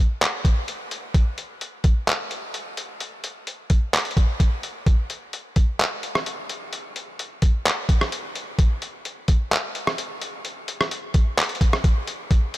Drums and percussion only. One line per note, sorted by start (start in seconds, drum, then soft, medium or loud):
0.21 clap loud
0.21 closed hi-hat medium
0.45 kick medium
0.45 closed hi-hat medium
0.68 closed hi-hat medium
0.91 closed hi-hat medium
1.14 kick loud
1.14 closed hi-hat medium
1.38 closed hi-hat medium
1.61 closed hi-hat medium
1.84 kick medium
1.84 closed hi-hat medium
2.08 clap loud
2.08 closed hi-hat medium
2.31 closed hi-hat medium
2.54 closed hi-hat medium
2.77 closed hi-hat medium
3.00 closed hi-hat medium
3.24 closed hi-hat medium
3.47 closed hi-hat medium
3.70 kick medium
3.70 closed hi-hat medium
3.93 clap loud
3.93 closed hi-hat medium
3.99 closed hi-hat medium
4.05 closed hi-hat medium
4.11 closed hi-hat medium
4.17 kick medium
4.17 closed hi-hat medium
4.40 kick medium
4.40 closed hi-hat medium
4.63 closed hi-hat medium
4.86 kick loud
4.86 closed hi-hat medium
5.10 closed hi-hat medium
5.33 closed hi-hat medium
5.56 kick medium
5.56 closed hi-hat medium
5.80 clap loud
5.80 closed hi-hat medium
6.03 closed hi-hat medium
6.15 cross-stick medium
6.26 closed hi-hat medium
6.49 closed hi-hat medium
6.73 closed hi-hat medium
6.96 closed hi-hat medium
7.19 closed hi-hat medium
7.42 kick medium
7.42 closed hi-hat medium
7.66 clap loud
7.66 closed hi-hat medium
7.89 kick medium
7.89 closed hi-hat medium
8.01 cross-stick medium
8.12 closed hi-hat medium
8.35 closed hi-hat medium
8.59 kick loud
8.59 closed hi-hat medium
8.82 closed hi-hat medium
9.05 closed hi-hat medium
9.28 kick medium
9.28 closed hi-hat medium
9.52 clap loud
9.52 closed hi-hat medium
9.75 closed hi-hat medium
9.87 cross-stick medium
9.98 closed hi-hat medium
10.21 closed hi-hat medium
10.45 closed hi-hat medium
10.68 closed hi-hat medium
10.81 cross-stick medium
10.91 closed hi-hat medium
11.14 kick loud
11.14 closed hi-hat medium
11.38 clap loud
11.38 closed hi-hat medium
11.43 closed hi-hat medium
11.49 closed hi-hat medium
11.55 closed hi-hat medium
11.61 kick medium
11.61 closed hi-hat medium
11.73 cross-stick medium
11.84 kick loud
11.84 closed hi-hat medium
12.07 closed hi-hat medium
12.31 kick loud
12.31 closed hi-hat medium
12.54 closed hi-hat medium